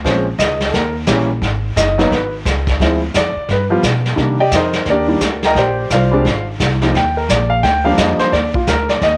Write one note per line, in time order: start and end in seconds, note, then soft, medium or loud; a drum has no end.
0.04 0.38 A#1 medium
0.04 0.24 F3 medium
0.04 0.25 G#3 medium
0.04 0.25 C4 medium
0.04 0.25 C#4 medium
0.04 brush sweep soft
0.04 kick soft
0.04 snare soft
0.38 0.72 C#2 medium
0.38 0.71 D#5 medium
0.38 kick soft
0.38 snare medium
0.38 hi-hat pedal medium
0.60 snare soft
0.70 1.06 D#2 medium
0.70 0.73 A4 soft
0.70 0.95 A#4 medium
0.70 brush sweep soft
0.70 kick soft
0.70 snare soft
1.07 1.41 A#1 medium
1.07 1.27 E3 medium
1.07 1.27 G3 medium
1.07 1.28 A#3 medium
1.07 1.28 C#4 medium
1.07 kick soft
1.07 snare medium
1.07 hi-hat pedal medium
1.42 1.75 G#1 medium
1.42 brush sweep soft
1.42 kick soft
1.42 snare soft
1.76 2.10 F#1 medium
1.76 2.09 D#5 medium
1.76 kick soft
1.76 snare medium
1.76 hi-hat pedal soft
1.98 2.10 F#3 medium
1.98 2.10 A#3 medium
1.98 2.10 B3 medium
1.98 2.10 D#4 medium
1.98 snare soft
2.11 2.44 G#1 medium
2.11 2.32 B4 medium
2.11 brush sweep soft
2.11 kick soft
2.11 snare soft
2.45 2.79 C#2 medium
2.45 kick soft
2.45 snare medium
2.45 hi-hat pedal soft
2.67 kick soft
2.67 snare soft
2.80 3.13 D2 medium
2.80 3.00 F3 medium
2.80 3.00 G#3 soft
2.80 3.00 C4 soft
2.80 3.01 E4 medium
2.80 brush sweep soft
2.80 kick soft
2.80 snare soft
3.14 3.35 F2 medium
3.14 3.48 D5 medium
3.14 kick soft
3.14 snare medium
3.14 hi-hat pedal medium
3.36 muted upright bass stroke soft
3.49 3.82 G2 medium
3.49 3.64 B4 medium
3.49 brush sweep soft
3.49 kick soft
3.49 snare soft
3.70 3.82 F3 medium
3.70 3.82 G3 medium
3.70 3.82 B3 medium
3.70 3.83 F4 medium
3.83 4.17 B2 medium
3.83 kick soft
3.83 snare medium
3.83 hi-hat pedal soft
4.05 snare soft
4.16 4.51 C3 medium
4.16 4.37 D#3 medium
4.16 4.37 G3 soft
4.16 4.37 A#3 soft
4.16 4.37 D4 medium
4.16 brush sweep soft
4.16 kick soft
4.16 snare soft
4.40 4.53 G4 medium
4.40 4.52 D5 medium
4.40 4.52 D#5 medium
4.40 4.52 G5 medium
4.51 4.85 F2 medium
4.51 4.86 D#4 medium
4.51 4.86 C5 medium
4.51 4.86 D#5 medium
4.51 kick soft
4.51 snare soft
4.51 hi-hat pedal medium
4.56 4.86 A#4 medium
4.73 snare medium
4.85 5.20 D#2 medium
4.85 brush sweep soft
4.85 kick soft
4.85 snare soft
4.90 5.08 D4 medium
4.90 5.41 G4 medium
4.90 5.41 A#4 medium
4.90 5.41 D5 medium
5.08 5.20 D#3 medium
5.08 5.20 G3 soft
5.08 5.20 A#3 soft
5.08 5.21 D4 medium
5.21 5.55 D2 medium
5.21 kick soft
5.21 snare medium
5.21 hi-hat pedal medium
5.42 5.57 A#4 medium
5.42 5.57 D#5 medium
5.42 5.56 G5 medium
5.42 5.57 A#5 medium
5.42 snare soft
5.55 5.89 A#1 medium
5.55 5.89 G4 medium
5.55 5.89 C5 medium
5.55 5.89 D5 medium
5.55 5.89 G5 medium
5.55 brush sweep soft
5.55 kick soft
5.55 snare soft
5.90 6.24 C2 medium
5.90 6.45 F4 medium
5.90 6.45 C5 medium
5.90 6.44 D5 medium
5.90 6.44 F5 medium
5.90 kick soft
5.90 snare medium
5.90 hi-hat pedal medium
6.11 6.23 G3 medium
6.11 6.24 G#3 medium
6.11 6.24 C4 medium
6.11 6.24 D4 medium
6.25 6.58 G#1 medium
6.25 brush sweep soft
6.25 kick soft
6.25 snare soft
6.60 6.93 C2 medium
6.60 kick soft
6.60 snare medium
6.60 hi-hat pedal medium
6.81 6.93 F3 medium
6.81 6.93 G3 medium
6.81 6.94 A#3 medium
6.81 6.94 D#4 medium
6.81 snare soft
6.94 7.28 D#2 medium
6.94 7.17 G5 medium
6.94 brush sweep soft
6.94 kick soft
6.94 snare soft
7.17 7.29 A#4 medium
7.29 7.62 A#1 medium
7.29 7.51 D5 medium
7.29 kick soft
7.29 snare medium
7.29 hi-hat pedal medium
7.50 7.63 F5 medium
7.63 7.97 D2 medium
7.63 7.84 G5 loud
7.63 brush sweep soft
7.63 kick soft
7.63 snare soft
7.84 8.30 F3 medium
7.84 8.30 G3 medium
7.84 8.30 A#3 medium
7.84 8.30 D4 medium
7.84 7.97 F5 medium
7.97 8.18 F2 medium
7.97 8.19 D#5 medium
7.97 kick soft
7.97 snare medium
7.97 hi-hat pedal medium
8.19 8.32 C5 medium
8.19 muted upright bass stroke soft
8.19 snare soft
8.32 8.66 D#2 medium
8.32 8.54 D5 medium
8.32 brush sweep soft
8.32 kick soft
8.32 snare soft
8.54 8.67 F4 medium
8.54 kick soft
8.67 9.01 D2 medium
8.67 8.89 A#4 medium
8.67 kick soft
8.67 snare medium
8.67 hi-hat pedal soft
8.89 9.02 D5 medium
8.89 snare soft
9.01 9.17 D#2 medium
9.01 9.16 D#5 medium
9.01 brush sweep soft
9.01 kick soft
9.01 snare soft